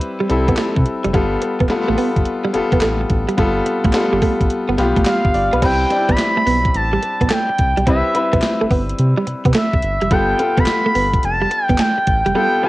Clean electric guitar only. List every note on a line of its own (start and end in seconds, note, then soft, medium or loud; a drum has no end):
0.20 0.26 G3 medium
0.30 muted clean electric guitar stroke soft
0.48 0.54 B3 medium
0.58 0.69 A3 medium
0.76 muted clean electric guitar stroke soft
1.04 1.10 G3 medium
1.14 1.26 G3 medium
1.42 muted clean electric guitar stroke soft
1.60 1.66 B3 medium
1.70 muted clean electric guitar stroke soft
1.88 1.94 A3 medium
1.98 2.10 B3 medium
2.45 2.51 G3 medium
2.54 muted clean electric guitar stroke soft
2.73 2.79 B3 medium
2.82 2.94 A3 medium
3.01 muted clean electric guitar stroke soft
3.29 3.35 G3 medium
3.38 3.50 G3 medium
3.66 muted clean electric guitar stroke soft
3.85 3.91 A3 medium
3.94 muted clean electric guitar stroke soft
4.13 4.19 G3 medium
4.22 4.34 A3 medium
4.69 4.75 B3 medium
4.79 muted clean electric guitar stroke soft
4.97 5.03 A3 medium
5.06 5.18 G3 medium
5.25 muted clean electric guitar stroke soft
5.53 5.59 B3 medium
5.62 5.74 C4 medium
5.91 muted clean electric guitar stroke soft
6.09 6.15 B3 medium
6.18 muted clean electric guitar stroke soft
6.37 6.43 A3 medium
6.47 6.58 B3 medium
6.93 6.99 G3 medium
7.03 muted clean electric guitar stroke soft
7.21 7.27 B3 medium
7.31 7.42 A3 medium
7.49 muted clean electric guitar stroke soft
7.77 7.83 G3 medium
7.87 7.98 C4 medium
8.15 muted clean electric guitar stroke soft
8.33 8.39 B3 medium
8.43 muted clean electric guitar stroke soft
8.61 8.67 A3 medium
8.71 8.82 B3 medium
9.17 9.23 G3 medium
9.27 muted clean electric guitar stroke soft
9.45 9.51 B3 medium
9.55 9.67 A3 medium
9.74 muted clean electric guitar stroke soft
10.02 10.08 G3 medium
10.11 10.23 G3 medium
10.40 muted clean electric guitar stroke soft
10.58 10.64 B3 medium
10.67 muted clean electric guitar stroke soft
10.86 10.92 A3 medium
10.95 11.07 B3 medium
11.42 11.48 G3 medium
11.51 muted clean electric guitar stroke soft
11.70 11.76 B3 medium
11.79 11.91 A3 medium
11.98 muted clean electric guitar stroke soft
12.26 12.32 G3 medium
12.35 12.47 G3 medium
12.63 muted clean electric guitar stroke soft